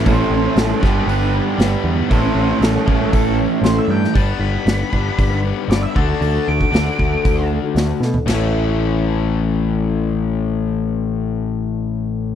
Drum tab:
CC |----------------|----------------|----------------|----------------|
HH |o---o---o---o---|o---o---o---o---|o---o---o---o---|o---o---o---o---|
SD |----o-o-----o---|----o-------o--o|----o-------o---|----o-------o-o-|
FT |----------------|----------------|----------------|---------------o|
BD |o-----o---------|o-----o-o-------|o-----o-o-----o-|---o--o-o-------|

CC |x---------------|----------------|
HH |----------------|----------------|
SD |o---------------|----------------|
FT |----------------|----------------|
BD |----------------|----------------|